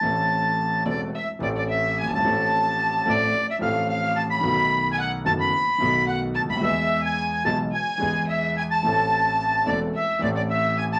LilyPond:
<<
  \new Staff \with { instrumentName = "Bandoneon" } { \time 4/4 \key a \minor \tempo 4 = 109 a''4. d''8 e''8 d''16 d''16 e''8 gis''16 a''16~ | a''4. d''8. e''16 f''8 f''8 a''16 b''16~ | b''8.~ b''32 gis''32 fis''8 a''16 b''4~ b''16 fis''8 a''16 b''16 | e''8. gis''8. a''8 gis''4 e''8 gis''16 a''16~ |
a''4. d''8 e''8 d''16 d''16 e''8 gis''16 a''16 | }
  \new Staff \with { instrumentName = "Violin" } { \time 4/4 \key a \minor r4. d''8 e''8 d''16 d''16 e''8 gis''16 a''16~ | a''4. d''8. e''16 f''8 f''8 a''16 b''16~ | b''8.~ b''32 gis''32 fis''8 a''16 b''4~ b''16 fis''8 a''16 b''16 | e''8. gis''8. a''8 gis''4 e''8 gis''16 a''16~ |
a''4. d''8 e''8 d''16 d''16 e''8 gis''16 a''16 | }
  \new Staff \with { instrumentName = "Grand piano" } { \clef bass \time 4/4 \key a \minor << { <a,, a, e a c' a'>4. <e,, e, e a c' a'>8 r8 <a,, a, e a c' a'>4. | <a,, a, f a c' a'>4. <a,, a, f a c' a'>8 r8 <a,, a, f a c' a'>4. | <b,, b, dis a b fis'>4. <fis,, fis, dis a b fis'>8 r8 <b,, b, dis a b fis'>4. | <e, e gis b gis'>4. <b,, b, e gis b gis'>8 r8 <e, e gis b gis'>4. |
<a,, a, e a c' a'>4. <e,, e, e a c' a'>8 r8 <a,, a, e a c' a'>4. | } \\ { r2. r8 r32 fis,,32 g,,32 gis,,32 | r1 | r2. r8 r32 cis,32 d,32 dis,32 | r1 |
r1 | } >> }
  \new Staff \with { instrumentName = "Upright bass" } { \clef bass \time 4/4 \key a \minor a,,4~ a,,16. r32 e,,16. r8 r32 a,,4~ a,,32 fis,,32 g,,32 gis,,32 | a,,4~ a,,16. r32 a,,16. r8 r32 a,,4~ a,,16. r32 | b,,4~ b,,16. r32 fis,,16. r8 r32 b,,4~ b,,32 cis,32 d,32 dis,32 | e,4~ e,16. r32 b,,16. r8 r32 e,4~ e,16. r32 |
a,,4~ a,,16. r32 e,,16. r8 r32 a,,4~ a,,16. r32 | }
>>